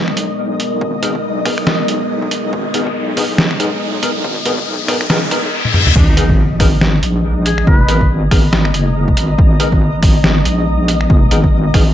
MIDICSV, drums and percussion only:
0, 0, Header, 1, 2, 480
1, 0, Start_track
1, 0, Key_signature, 5, "minor"
1, 0, Tempo, 428571
1, 911, Time_signature, 4, 2, 24, 8
1, 13372, End_track
2, 0, Start_track
2, 0, Title_t, "Drums"
2, 87, Note_on_c, 9, 26, 52
2, 189, Note_on_c, 9, 42, 79
2, 199, Note_off_c, 9, 26, 0
2, 301, Note_off_c, 9, 42, 0
2, 669, Note_on_c, 9, 42, 77
2, 781, Note_off_c, 9, 42, 0
2, 911, Note_on_c, 9, 36, 118
2, 1023, Note_off_c, 9, 36, 0
2, 1149, Note_on_c, 9, 42, 79
2, 1261, Note_off_c, 9, 42, 0
2, 1289, Note_on_c, 9, 36, 58
2, 1401, Note_off_c, 9, 36, 0
2, 1630, Note_on_c, 9, 26, 49
2, 1630, Note_on_c, 9, 46, 88
2, 1631, Note_on_c, 9, 36, 106
2, 1742, Note_off_c, 9, 26, 0
2, 1742, Note_off_c, 9, 46, 0
2, 1743, Note_off_c, 9, 36, 0
2, 1767, Note_on_c, 9, 26, 74
2, 1868, Note_on_c, 9, 38, 122
2, 1879, Note_off_c, 9, 26, 0
2, 1980, Note_off_c, 9, 38, 0
2, 2109, Note_on_c, 9, 42, 77
2, 2221, Note_off_c, 9, 42, 0
2, 2490, Note_on_c, 9, 36, 62
2, 2590, Note_on_c, 9, 42, 79
2, 2602, Note_off_c, 9, 36, 0
2, 2702, Note_off_c, 9, 42, 0
2, 2832, Note_on_c, 9, 36, 125
2, 2944, Note_off_c, 9, 36, 0
2, 3070, Note_on_c, 9, 42, 80
2, 3182, Note_off_c, 9, 42, 0
2, 3210, Note_on_c, 9, 36, 61
2, 3322, Note_off_c, 9, 36, 0
2, 3550, Note_on_c, 9, 46, 90
2, 3552, Note_on_c, 9, 36, 109
2, 3662, Note_off_c, 9, 46, 0
2, 3664, Note_off_c, 9, 36, 0
2, 3790, Note_on_c, 9, 38, 127
2, 3902, Note_off_c, 9, 38, 0
2, 3929, Note_on_c, 9, 26, 51
2, 4030, Note_on_c, 9, 42, 78
2, 4041, Note_off_c, 9, 26, 0
2, 4142, Note_off_c, 9, 42, 0
2, 4511, Note_on_c, 9, 42, 81
2, 4623, Note_off_c, 9, 42, 0
2, 4751, Note_on_c, 9, 36, 123
2, 4863, Note_off_c, 9, 36, 0
2, 4990, Note_on_c, 9, 42, 79
2, 5102, Note_off_c, 9, 42, 0
2, 5130, Note_on_c, 9, 36, 61
2, 5242, Note_off_c, 9, 36, 0
2, 5470, Note_on_c, 9, 26, 52
2, 5470, Note_on_c, 9, 46, 90
2, 5471, Note_on_c, 9, 36, 111
2, 5582, Note_off_c, 9, 26, 0
2, 5582, Note_off_c, 9, 46, 0
2, 5583, Note_off_c, 9, 36, 0
2, 5609, Note_on_c, 9, 26, 75
2, 5711, Note_on_c, 9, 38, 124
2, 5721, Note_off_c, 9, 26, 0
2, 5823, Note_off_c, 9, 38, 0
2, 5951, Note_on_c, 9, 42, 78
2, 6063, Note_off_c, 9, 42, 0
2, 6329, Note_on_c, 9, 48, 52
2, 6430, Note_on_c, 9, 47, 76
2, 6441, Note_off_c, 9, 48, 0
2, 6542, Note_off_c, 9, 47, 0
2, 6569, Note_on_c, 9, 45, 81
2, 6671, Note_on_c, 9, 36, 120
2, 6671, Note_on_c, 9, 49, 101
2, 6681, Note_off_c, 9, 45, 0
2, 6783, Note_off_c, 9, 36, 0
2, 6783, Note_off_c, 9, 49, 0
2, 6912, Note_on_c, 9, 42, 83
2, 7024, Note_off_c, 9, 42, 0
2, 7050, Note_on_c, 9, 36, 58
2, 7162, Note_off_c, 9, 36, 0
2, 7392, Note_on_c, 9, 26, 53
2, 7392, Note_on_c, 9, 36, 106
2, 7392, Note_on_c, 9, 46, 98
2, 7504, Note_off_c, 9, 26, 0
2, 7504, Note_off_c, 9, 36, 0
2, 7504, Note_off_c, 9, 46, 0
2, 7631, Note_on_c, 9, 38, 121
2, 7743, Note_off_c, 9, 38, 0
2, 7871, Note_on_c, 9, 42, 83
2, 7983, Note_off_c, 9, 42, 0
2, 8352, Note_on_c, 9, 42, 81
2, 8464, Note_off_c, 9, 42, 0
2, 8489, Note_on_c, 9, 26, 54
2, 8592, Note_on_c, 9, 36, 122
2, 8601, Note_off_c, 9, 26, 0
2, 8704, Note_off_c, 9, 36, 0
2, 8831, Note_on_c, 9, 42, 87
2, 8943, Note_off_c, 9, 42, 0
2, 8970, Note_on_c, 9, 36, 61
2, 9082, Note_off_c, 9, 36, 0
2, 9311, Note_on_c, 9, 26, 51
2, 9311, Note_on_c, 9, 36, 109
2, 9311, Note_on_c, 9, 46, 94
2, 9423, Note_off_c, 9, 26, 0
2, 9423, Note_off_c, 9, 36, 0
2, 9423, Note_off_c, 9, 46, 0
2, 9551, Note_on_c, 9, 38, 125
2, 9663, Note_off_c, 9, 38, 0
2, 9690, Note_on_c, 9, 26, 79
2, 9790, Note_on_c, 9, 42, 82
2, 9802, Note_off_c, 9, 26, 0
2, 9902, Note_off_c, 9, 42, 0
2, 10169, Note_on_c, 9, 36, 64
2, 10270, Note_on_c, 9, 42, 83
2, 10281, Note_off_c, 9, 36, 0
2, 10382, Note_off_c, 9, 42, 0
2, 10511, Note_on_c, 9, 36, 127
2, 10623, Note_off_c, 9, 36, 0
2, 10750, Note_on_c, 9, 42, 85
2, 10862, Note_off_c, 9, 42, 0
2, 10889, Note_on_c, 9, 36, 62
2, 11001, Note_off_c, 9, 36, 0
2, 11229, Note_on_c, 9, 26, 52
2, 11229, Note_on_c, 9, 46, 91
2, 11231, Note_on_c, 9, 36, 113
2, 11341, Note_off_c, 9, 26, 0
2, 11341, Note_off_c, 9, 46, 0
2, 11343, Note_off_c, 9, 36, 0
2, 11469, Note_on_c, 9, 38, 127
2, 11581, Note_off_c, 9, 38, 0
2, 11709, Note_on_c, 9, 42, 78
2, 11821, Note_off_c, 9, 42, 0
2, 12190, Note_on_c, 9, 42, 82
2, 12302, Note_off_c, 9, 42, 0
2, 12328, Note_on_c, 9, 26, 51
2, 12431, Note_on_c, 9, 36, 123
2, 12440, Note_off_c, 9, 26, 0
2, 12543, Note_off_c, 9, 36, 0
2, 12669, Note_on_c, 9, 42, 77
2, 12781, Note_off_c, 9, 42, 0
2, 12809, Note_on_c, 9, 36, 60
2, 12921, Note_off_c, 9, 36, 0
2, 13150, Note_on_c, 9, 26, 51
2, 13150, Note_on_c, 9, 46, 89
2, 13151, Note_on_c, 9, 36, 113
2, 13262, Note_off_c, 9, 26, 0
2, 13262, Note_off_c, 9, 46, 0
2, 13263, Note_off_c, 9, 36, 0
2, 13372, End_track
0, 0, End_of_file